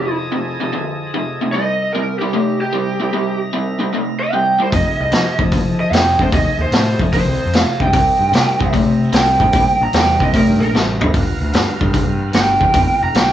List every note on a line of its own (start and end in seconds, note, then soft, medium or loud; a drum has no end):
0.00 0.29 F2 medium
0.00 0.29 C3 medium
0.00 0.16 G4 medium
0.05 1.51 F3 medium
0.05 1.51 G#4 medium
0.05 1.51 A4 medium
0.05 1.51 D#5 medium
0.32 0.56 F2 medium
0.32 0.56 C3 medium
0.60 0.71 F2 medium
0.60 0.72 C3 medium
0.73 1.10 F2 medium
0.73 1.10 D3 medium
1.14 1.37 F2 medium
1.14 1.37 C3 medium
1.41 1.52 F2 medium
1.41 1.52 C3 medium
1.51 4.69 C3 medium
1.51 1.91 C3 medium
1.51 1.91 G3 medium
1.51 4.70 D#4 medium
1.51 4.70 E4 medium
1.51 1.91 D#5 loud
1.51 4.70 A#5 medium
1.93 2.18 C3 medium
1.93 2.18 G3 medium
1.93 2.18 A#4 medium
2.19 2.32 C3 medium
2.19 2.32 G3 medium
2.19 2.58 G4 medium
2.33 2.70 C3 medium
2.33 2.70 A3 medium
2.61 3.38 G4 medium
2.73 2.97 C3 medium
2.73 2.97 G3 medium
3.00 3.11 C3 medium
3.00 3.12 G3 medium
3.13 3.50 C3 medium
3.13 3.50 G3 medium
3.53 3.77 C3 medium
3.53 3.77 G3 medium
3.79 3.91 C3 medium
3.79 3.92 G3 medium
3.94 4.31 C3 medium
3.94 4.31 A3 medium
4.20 4.33 D#5 medium
4.33 4.57 C3 medium
4.33 4.57 G3 medium
4.33 4.59 G5 medium
4.59 4.71 C3 medium
4.59 4.72 G3 medium
4.59 4.74 C5 medium
4.72 4.84 F2 medium
4.72 5.11 F2 medium
4.72 5.11 C3 medium
4.72 7.91 G#4 medium
4.72 7.90 A4 medium
4.72 7.91 D#5 medium
4.72 5.00 D#5 medium
4.72 kick loud
4.72 open hi-hat soft
4.99 5.11 C2 medium
4.99 5.39 D#5 medium
5.12 5.37 F2 medium
5.12 5.37 C3 medium
5.12 5.23 F3 medium
5.12 snare loud
5.12 open hi-hat soft
5.39 5.51 F2 medium
5.39 5.52 C3 medium
5.39 5.61 F3 medium
5.39 kick medium
5.52 5.90 F2 medium
5.52 5.91 D3 medium
5.52 kick medium
5.52 open hi-hat soft
5.64 5.87 F3 medium
5.80 5.94 D#5 loud
5.91 6.14 F2 medium
5.91 6.18 F2 medium
5.91 6.18 C3 medium
5.91 6.20 G5 medium
5.91 snare loud
5.91 open hi-hat soft
6.19 6.32 F2 medium
6.19 6.33 C3 medium
6.19 6.25 D3 medium
6.19 6.33 C5 medium
6.19 kick medium
6.32 6.44 D#2 loud
6.32 6.71 F2 medium
6.32 6.71 C3 medium
6.32 6.60 D#5 medium
6.32 kick loud
6.32 open hi-hat soft
6.58 6.64 D#2 medium
6.62 7.00 C5 loud
6.71 6.98 F2 medium
6.71 6.95 A2 medium
6.71 6.98 C3 medium
6.71 snare loud
6.71 open hi-hat soft
6.99 7.12 F2 medium
6.99 7.13 C3 medium
6.99 7.22 F3 medium
6.99 kick medium
7.13 7.52 F2 medium
7.13 7.52 D3 medium
7.13 7.52 C5 medium
7.13 kick medium
7.13 open hi-hat soft
7.25 7.37 C2 medium
7.45 7.63 F2 medium
7.53 7.78 F2 medium
7.53 7.79 C3 medium
7.53 7.80 F5 medium
7.53 snare loud
7.53 open hi-hat soft
7.80 7.93 F2 medium
7.80 7.92 C3 medium
7.80 7.93 G5 medium
7.80 kick medium
7.86 7.92 G2 medium
7.93 8.05 C2 medium
7.93 8.31 C3 medium
7.93 8.31 G3 medium
7.93 11.12 D#4 medium
7.93 11.12 E4 medium
7.93 8.72 G5 medium
7.93 11.12 A#5 medium
7.93 kick loud
7.93 open hi-hat soft
8.20 8.31 G2 medium
8.32 8.44 C3 medium
8.32 8.58 C3 medium
8.32 8.58 G3 medium
8.32 snare loud
8.32 open hi-hat soft
8.59 8.72 C3 medium
8.59 8.83 C3 medium
8.59 8.72 G3 medium
8.59 kick medium
8.73 9.11 C3 medium
8.73 9.11 A3 medium
8.73 kick medium
8.73 open hi-hat soft
8.86 9.09 C3 medium
9.13 9.36 C2 medium
9.13 9.38 C3 medium
9.13 9.38 G3 medium
9.13 9.80 G5 loud
9.13 snare loud
9.13 open hi-hat soft
9.40 9.46 A2 medium
9.40 9.53 C3 medium
9.40 9.53 G3 medium
9.40 kick medium
9.53 9.64 A#1 medium
9.53 9.92 C3 medium
9.53 9.92 G3 medium
9.53 kick loud
9.53 open hi-hat soft
9.80 9.86 A#1 medium
9.80 9.95 A#5 medium
9.93 10.16 E2 medium
9.93 10.18 C3 medium
9.93 10.19 G3 medium
9.93 10.21 G5 medium
9.93 snare loud
9.93 open hi-hat medium
10.20 10.43 C3 medium
10.20 10.33 C3 medium
10.20 10.33 G3 medium
10.20 10.35 D#5 medium
10.20 kick medium
10.34 10.72 C3 medium
10.34 10.72 A3 medium
10.34 10.60 A#4 medium
10.34 kick medium
10.34 open hi-hat soft
10.47 10.58 G2 medium
10.59 10.72 A#1 medium
10.59 10.74 A#4 loud
10.72 10.97 A1 medium
10.72 10.99 C3 medium
10.72 10.99 G3 medium
10.72 snare medium
11.00 11.13 G1 medium
11.00 11.13 C3 medium
11.00 11.13 G3 medium
11.00 floor tom medium
11.13 11.25 G1 medium
11.13 11.52 G2 medium
11.13 11.52 D3 medium
11.13 13.33 B3 medium
11.13 13.33 A#4 medium
11.13 13.33 F5 medium
11.13 kick loud
11.13 open hi-hat soft
11.41 11.52 D2 medium
11.53 11.65 G2 medium
11.53 11.79 G2 medium
11.53 11.79 D3 medium
11.53 snare loud
11.53 open hi-hat soft
11.81 11.92 G2 medium
11.81 12.03 G2 medium
11.81 11.93 D3 medium
11.81 kick medium
11.94 12.32 G2 medium
11.94 12.32 E3 medium
11.94 kick medium
11.94 open hi-hat soft
12.07 12.30 G2 medium
12.33 12.57 G1 medium
12.33 12.59 G2 medium
12.33 12.60 D3 medium
12.33 13.01 G5 loud
12.33 snare loud
12.33 open hi-hat soft
12.60 12.66 E2 medium
12.60 12.73 G2 medium
12.60 12.74 D3 medium
12.60 kick medium
12.74 12.86 F1 loud
12.74 13.12 G2 medium
12.74 13.12 D3 medium
12.74 kick loud
12.74 open hi-hat soft
13.01 13.07 F1 medium
13.01 13.16 A#5 medium
13.14 13.33 B1 medium
13.14 13.33 G2 medium
13.14 13.33 D3 medium
13.14 13.33 G5 medium
13.14 snare loud
13.14 open hi-hat soft